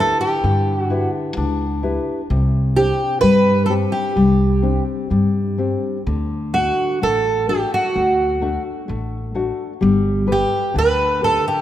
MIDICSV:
0, 0, Header, 1, 4, 480
1, 0, Start_track
1, 0, Key_signature, 1, "major"
1, 0, Tempo, 927357
1, 225, Time_signature, 2, 2, 24, 8
1, 1664, Tempo, 950872
1, 3584, Tempo, 934579
1, 5945, End_track
2, 0, Start_track
2, 0, Title_t, "Twelve-string acoustic guitar"
2, 0, Program_c, 0, 25
2, 0, Note_on_c, 0, 69, 81
2, 105, Note_off_c, 0, 69, 0
2, 107, Note_on_c, 0, 67, 73
2, 418, Note_off_c, 0, 67, 0
2, 418, Note_on_c, 0, 66, 73
2, 567, Note_off_c, 0, 66, 0
2, 1431, Note_on_c, 0, 67, 78
2, 1658, Note_off_c, 0, 67, 0
2, 1661, Note_on_c, 0, 71, 96
2, 1885, Note_off_c, 0, 71, 0
2, 1887, Note_on_c, 0, 69, 84
2, 1921, Note_off_c, 0, 69, 0
2, 2020, Note_on_c, 0, 67, 66
2, 2479, Note_off_c, 0, 67, 0
2, 3342, Note_on_c, 0, 66, 81
2, 3567, Note_off_c, 0, 66, 0
2, 3591, Note_on_c, 0, 69, 89
2, 3813, Note_off_c, 0, 69, 0
2, 3828, Note_on_c, 0, 67, 78
2, 3950, Note_off_c, 0, 67, 0
2, 3954, Note_on_c, 0, 66, 76
2, 4406, Note_off_c, 0, 66, 0
2, 5281, Note_on_c, 0, 67, 70
2, 5516, Note_off_c, 0, 67, 0
2, 5518, Note_on_c, 0, 71, 97
2, 5752, Note_off_c, 0, 71, 0
2, 5754, Note_on_c, 0, 69, 89
2, 5861, Note_off_c, 0, 69, 0
2, 5874, Note_on_c, 0, 67, 70
2, 5945, Note_off_c, 0, 67, 0
2, 5945, End_track
3, 0, Start_track
3, 0, Title_t, "Nylon-string guitar"
3, 0, Program_c, 1, 24
3, 0, Note_on_c, 1, 50, 58
3, 0, Note_on_c, 1, 64, 49
3, 0, Note_on_c, 1, 67, 39
3, 0, Note_on_c, 1, 71, 53
3, 211, Note_off_c, 1, 50, 0
3, 225, Note_on_c, 1, 50, 61
3, 375, Note_off_c, 1, 64, 0
3, 375, Note_off_c, 1, 67, 0
3, 376, Note_off_c, 1, 71, 0
3, 466, Note_on_c, 1, 64, 54
3, 467, Note_on_c, 1, 67, 46
3, 471, Note_on_c, 1, 71, 53
3, 692, Note_off_c, 1, 50, 0
3, 707, Note_on_c, 1, 62, 62
3, 850, Note_off_c, 1, 64, 0
3, 851, Note_off_c, 1, 67, 0
3, 852, Note_off_c, 1, 71, 0
3, 946, Note_on_c, 1, 64, 47
3, 949, Note_on_c, 1, 67, 45
3, 951, Note_on_c, 1, 71, 53
3, 1137, Note_off_c, 1, 64, 0
3, 1138, Note_off_c, 1, 67, 0
3, 1139, Note_off_c, 1, 71, 0
3, 1170, Note_off_c, 1, 62, 0
3, 1190, Note_on_c, 1, 48, 59
3, 1432, Note_on_c, 1, 60, 51
3, 1435, Note_on_c, 1, 62, 49
3, 1438, Note_on_c, 1, 67, 56
3, 1653, Note_off_c, 1, 48, 0
3, 1667, Note_on_c, 1, 55, 67
3, 1811, Note_off_c, 1, 60, 0
3, 1814, Note_off_c, 1, 62, 0
3, 1814, Note_off_c, 1, 67, 0
3, 1901, Note_on_c, 1, 60, 44
3, 1907, Note_on_c, 1, 62, 41
3, 1909, Note_on_c, 1, 67, 56
3, 2126, Note_off_c, 1, 55, 0
3, 2140, Note_on_c, 1, 55, 59
3, 2283, Note_off_c, 1, 60, 0
3, 2287, Note_off_c, 1, 62, 0
3, 2287, Note_off_c, 1, 67, 0
3, 2375, Note_on_c, 1, 60, 49
3, 2378, Note_on_c, 1, 62, 41
3, 2381, Note_on_c, 1, 67, 53
3, 2604, Note_off_c, 1, 55, 0
3, 2617, Note_on_c, 1, 55, 58
3, 2761, Note_off_c, 1, 60, 0
3, 2763, Note_off_c, 1, 62, 0
3, 2765, Note_off_c, 1, 67, 0
3, 2857, Note_on_c, 1, 62, 39
3, 2859, Note_on_c, 1, 60, 44
3, 2863, Note_on_c, 1, 67, 48
3, 3052, Note_off_c, 1, 62, 0
3, 3054, Note_off_c, 1, 60, 0
3, 3056, Note_off_c, 1, 67, 0
3, 3087, Note_off_c, 1, 55, 0
3, 3102, Note_on_c, 1, 50, 55
3, 3339, Note_on_c, 1, 57, 49
3, 3342, Note_on_c, 1, 62, 43
3, 3344, Note_on_c, 1, 66, 48
3, 3571, Note_off_c, 1, 50, 0
3, 3577, Note_off_c, 1, 57, 0
3, 3583, Note_on_c, 1, 57, 61
3, 3727, Note_off_c, 1, 62, 0
3, 3729, Note_off_c, 1, 66, 0
3, 3814, Note_off_c, 1, 57, 0
3, 3820, Note_on_c, 1, 57, 48
3, 3825, Note_on_c, 1, 62, 42
3, 3829, Note_on_c, 1, 66, 47
3, 4059, Note_off_c, 1, 57, 0
3, 4065, Note_on_c, 1, 57, 61
3, 4207, Note_off_c, 1, 62, 0
3, 4208, Note_off_c, 1, 66, 0
3, 4296, Note_off_c, 1, 57, 0
3, 4301, Note_on_c, 1, 57, 52
3, 4302, Note_on_c, 1, 62, 43
3, 4305, Note_on_c, 1, 66, 55
3, 4534, Note_off_c, 1, 57, 0
3, 4541, Note_on_c, 1, 57, 66
3, 4686, Note_off_c, 1, 62, 0
3, 4688, Note_off_c, 1, 66, 0
3, 4774, Note_off_c, 1, 57, 0
3, 4779, Note_on_c, 1, 57, 48
3, 4781, Note_on_c, 1, 62, 44
3, 4784, Note_on_c, 1, 66, 54
3, 4973, Note_off_c, 1, 57, 0
3, 4973, Note_off_c, 1, 62, 0
3, 4975, Note_off_c, 1, 66, 0
3, 5017, Note_on_c, 1, 55, 64
3, 5252, Note_on_c, 1, 67, 49
3, 5255, Note_on_c, 1, 69, 45
3, 5257, Note_on_c, 1, 71, 57
3, 5484, Note_off_c, 1, 55, 0
3, 5495, Note_on_c, 1, 50, 57
3, 5640, Note_off_c, 1, 67, 0
3, 5642, Note_off_c, 1, 69, 0
3, 5643, Note_off_c, 1, 71, 0
3, 5736, Note_on_c, 1, 67, 44
3, 5738, Note_on_c, 1, 69, 41
3, 5741, Note_on_c, 1, 71, 50
3, 5945, Note_off_c, 1, 50, 0
3, 5945, Note_off_c, 1, 67, 0
3, 5945, Note_off_c, 1, 69, 0
3, 5945, Note_off_c, 1, 71, 0
3, 5945, End_track
4, 0, Start_track
4, 0, Title_t, "Upright bass"
4, 0, Program_c, 2, 32
4, 0, Note_on_c, 2, 38, 79
4, 55, Note_off_c, 2, 38, 0
4, 227, Note_on_c, 2, 43, 86
4, 539, Note_off_c, 2, 43, 0
4, 708, Note_on_c, 2, 37, 82
4, 1018, Note_off_c, 2, 37, 0
4, 1191, Note_on_c, 2, 36, 91
4, 1501, Note_off_c, 2, 36, 0
4, 1671, Note_on_c, 2, 43, 82
4, 1978, Note_off_c, 2, 43, 0
4, 2144, Note_on_c, 2, 36, 85
4, 2454, Note_off_c, 2, 36, 0
4, 2621, Note_on_c, 2, 43, 73
4, 2934, Note_off_c, 2, 43, 0
4, 3104, Note_on_c, 2, 38, 93
4, 3417, Note_off_c, 2, 38, 0
4, 3586, Note_on_c, 2, 33, 75
4, 3898, Note_off_c, 2, 33, 0
4, 4066, Note_on_c, 2, 38, 83
4, 4376, Note_off_c, 2, 38, 0
4, 4547, Note_on_c, 2, 33, 78
4, 4858, Note_off_c, 2, 33, 0
4, 5025, Note_on_c, 2, 31, 95
4, 5336, Note_off_c, 2, 31, 0
4, 5504, Note_on_c, 2, 38, 80
4, 5817, Note_off_c, 2, 38, 0
4, 5945, End_track
0, 0, End_of_file